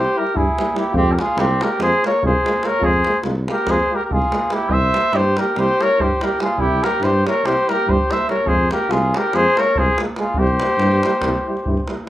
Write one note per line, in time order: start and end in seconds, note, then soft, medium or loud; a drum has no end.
0.00 0.20 G4 medium
0.00 0.19 C5 medium
0.05 davul high soft
0.16 0.25 G3 medium
0.16 0.24 E4 medium
0.16 0.38 G4 medium
0.16 0.38 A#4 medium
0.27 davul high soft
0.35 0.47 G2 medium
0.35 0.45 G3 medium
0.35 0.43 E4 medium
0.35 0.77 E4 medium
0.35 0.79 G#4 medium
0.35 davul low medium
0.57 0.65 G3 medium
0.57 0.65 E4 medium
0.57 davul high medium
0.74 0.82 G3 medium
0.74 0.83 E4 medium
0.74 0.94 E4 medium
0.74 0.95 G4 medium
0.74 davul high medium
0.92 1.18 F2 loud
0.92 1.04 G#3 medium
0.92 1.13 C4 medium
0.92 1.02 F4 medium
0.92 davul low loud
0.97 1.14 G4 loud
1.12 1.22 G4 medium
1.12 1.21 A#4 soft
1.17 1.26 G#3 medium
1.17 1.25 F4 medium
1.17 1.41 F4 medium
1.17 1.40 G#4 medium
1.17 davul high medium
1.37 1.60 C2 loud
1.37 1.47 G#3 medium
1.37 1.65 C4 medium
1.37 1.46 F4 medium
1.37 1.64 G4 medium
1.37 davul high medium
1.61 1.69 G#3 medium
1.61 1.69 F4 medium
1.61 1.81 G4 medium
1.61 1.81 A#4 medium
1.61 davul high medium
1.78 1.93 F2 medium
1.78 1.88 G#3 medium
1.78 1.90 F4 medium
1.78 2.03 C5 loud
1.78 davul high medium
1.82 2.04 G#4 medium
1.93 davul high soft
2.03 2.12 G#3 medium
2.03 2.11 F4 medium
2.03 2.22 A#4 medium
2.03 2.23 C#5 medium
2.03 davul high medium
2.14 davul high soft
2.23 2.35 C2 loud
2.23 2.32 G#3 medium
2.23 2.32 F4 medium
2.23 2.67 G#4 medium
2.23 2.69 C5 medium
2.23 davul low medium
2.44 2.52 G#3 medium
2.44 2.52 F4 medium
2.44 davul high medium
2.61 2.70 G#3 medium
2.61 2.69 F4 medium
2.61 davul high medium
2.66 2.85 A#4 medium
2.66 2.88 C#5 medium
2.80 3.05 F2 medium
2.80 2.91 G#3 medium
2.80 2.90 F4 medium
2.80 davul low medium
2.84 3.20 G#4 medium
2.84 3.21 C5 medium
2.93 davul high soft
3.04 3.13 G#3 medium
3.04 3.12 F4 soft
3.04 davul high medium
3.14 davul high soft
3.22 3.48 C2 medium
3.22 3.33 G#3 medium
3.22 3.33 F4 medium
3.22 davul high medium
3.35 davul high soft
3.47 3.56 G#3 medium
3.47 3.55 F4 medium
3.47 3.71 G4 medium
3.47 davul high medium
3.52 3.71 A#4 medium
3.58 davul high soft
3.66 3.80 F2 medium
3.66 3.76 G#3 medium
3.66 3.76 F4 medium
3.66 3.96 G#4 medium
3.66 3.97 C5 loud
3.66 davul high medium
3.66 davul low medium
3.80 davul high soft
3.89 3.99 G#3 medium
3.89 3.97 F4 medium
3.95 4.03 G4 medium
3.95 4.04 A#4 medium
4.01 4.14 G4 soft
4.01 4.14 A#4 medium
4.01 davul high soft
4.10 4.23 C2 medium
4.10 4.19 G#3 medium
4.10 4.19 F4 medium
4.10 4.54 F4 medium
4.10 4.55 G#4 medium
4.10 davul low medium
4.22 davul high soft
4.32 4.39 G#3 medium
4.32 4.39 F4 medium
4.32 davul high medium
4.41 davul high soft
4.50 4.58 G#3 medium
4.50 4.72 E4 medium
4.50 4.58 F4 soft
4.50 4.74 G4 medium
4.50 davul high medium
4.60 davul high soft
4.68 4.93 C2 medium
4.68 4.78 G3 medium
4.68 4.79 E4 medium
4.68 5.15 C5 medium
4.68 davul low medium
4.73 5.17 E5 loud
4.93 5.01 G3 soft
4.93 5.01 E4 soft
4.93 davul high medium
5.13 5.37 G2 medium
5.13 5.23 G3 medium
5.13 5.22 E4 medium
5.13 5.38 G4 medium
5.13 5.40 C5 loud
5.13 davul high medium
5.37 5.45 G3 medium
5.37 5.44 E4 medium
5.37 5.58 G4 medium
5.37 5.60 A#4 medium
5.37 davul high medium
5.56 5.70 C2 medium
5.56 5.66 G3 medium
5.56 5.66 E4 medium
5.56 5.83 G4 medium
5.56 5.83 C5 loud
5.56 davul high medium
5.68 davul high soft
5.79 5.88 G3 medium
5.79 5.87 E4 medium
5.79 6.03 A#4 medium
5.79 6.01 C#5 loud
5.79 davul high medium
5.91 davul high soft
5.97 6.12 G2 medium
5.97 6.08 G3 medium
5.97 6.06 E4 medium
5.97 6.25 C5 medium
5.97 davul low medium
6.02 6.24 G4 medium
6.20 6.29 G3 medium
6.20 6.27 E4 medium
6.20 6.40 A#4 medium
6.20 davul high medium
6.24 6.41 G4 medium
6.39 6.47 G3 medium
6.39 6.46 E4 medium
6.39 6.61 F4 medium
6.39 6.62 G#4 medium
6.39 davul high medium
6.57 6.81 C2 medium
6.57 6.67 G3 medium
6.57 6.67 E4 medium
6.57 6.86 E4 medium
6.57 6.85 G4 loud
6.57 davul low medium
6.81 6.90 G3 medium
6.81 6.88 E4 soft
6.81 7.05 A#4 loud
6.81 davul high medium
6.85 7.04 G4 medium
7.00 7.25 G2 medium
7.00 7.10 G3 medium
7.00 7.10 E4 medium
7.00 7.26 C5 medium
7.00 davul high medium
7.04 7.27 G4 medium
7.24 7.32 G3 medium
7.24 7.32 E4 medium
7.24 7.47 A#4 medium
7.24 7.47 C#5 medium
7.24 davul high medium
7.44 7.57 C2 medium
7.44 7.54 G3 medium
7.44 7.54 E4 medium
7.44 7.72 G4 medium
7.44 7.72 C5 loud
7.44 davul high medium
7.57 davul high soft
7.67 7.76 G3 medium
7.67 7.75 E4 medium
7.67 7.91 A#4 loud
7.67 davul high medium
7.72 7.90 G4 medium
7.80 davul high soft
7.86 7.99 G2 medium
7.86 7.97 G3 medium
7.86 7.95 E4 medium
7.86 8.13 C5 medium
7.86 davul low loud
7.90 8.12 G4 medium
8.09 8.18 G3 medium
8.09 8.17 E4 medium
8.09 8.28 C5 medium
8.09 8.29 E5 medium
8.09 davul high medium
8.27 8.36 G3 medium
8.27 8.34 E4 medium
8.27 8.48 A#4 medium
8.27 8.50 C#5 medium
8.27 davul high medium
8.46 8.70 F2 medium
8.46 8.56 G#3 medium
8.46 8.55 F4 medium
8.46 8.71 G#4 medium
8.46 8.72 C5 loud
8.46 davul low loud
8.70 8.78 G#3 medium
8.70 8.77 F4 medium
8.70 8.92 G4 medium
8.70 8.93 A#4 medium
8.70 davul high medium
8.88 9.13 C2 medium
8.88 9.00 G#3 medium
8.88 8.99 F4 medium
8.88 9.17 F4 medium
8.88 9.19 G#4 medium
8.88 davul high medium
9.13 9.22 G#3 medium
9.13 9.21 F4 medium
9.13 9.36 G4 medium
9.13 davul high medium
9.17 9.37 A#4 loud
9.32 9.47 F2 medium
9.32 9.44 G#3 medium
9.32 9.42 F4 medium
9.32 9.60 G#4 medium
9.32 9.61 C5 loud
9.32 davul high medium
9.56 9.66 G#3 medium
9.56 9.64 F4 medium
9.56 9.80 A#4 medium
9.56 davul high medium
9.60 9.79 C#5 loud
9.67 davul high soft
9.75 9.89 C2 medium
9.75 9.87 G#3 medium
9.75 9.84 F4 medium
9.75 10.00 G#4 medium
9.75 9.99 C5 medium
9.75 davul low medium
9.97 10.08 G#3 medium
9.97 10.05 F4 medium
9.97 davul high medium
10.16 10.25 G#3 medium
10.16 10.24 F4 medium
10.16 10.40 F4 medium
10.16 10.40 G#4 medium
10.16 davul high medium
10.34 10.60 C2 medium
10.34 10.46 G3 medium
10.34 10.44 E4 medium
10.34 davul low loud
10.38 11.90 G4 medium
10.38 11.90 C5 loud
10.47 davul high soft
10.59 10.68 G3 medium
10.59 10.67 E4 medium
10.59 davul high medium
10.70 davul high soft
10.78 11.02 G2 loud
10.78 10.90 G3 medium
10.78 10.88 E4 medium
10.78 davul high medium
10.92 davul high soft
11.03 11.12 G3 medium
11.03 11.11 E4 medium
11.03 davul high medium
11.13 davul high soft
11.21 11.35 C2 medium
11.21 11.33 G3 medium
11.21 11.32 E4 medium
11.21 davul high medium
11.21 davul low medium
11.35 davul high soft
11.46 11.56 G3 soft
11.46 11.54 E4 medium
11.57 davul high soft
11.65 11.78 G2 medium
11.65 11.75 G3 soft
11.65 11.74 E4 medium
11.65 davul low medium
11.77 davul high soft
11.86 11.96 G3 medium
11.86 11.94 E4 medium
11.86 davul high medium
11.98 davul high soft
12.04 12.09 E4 medium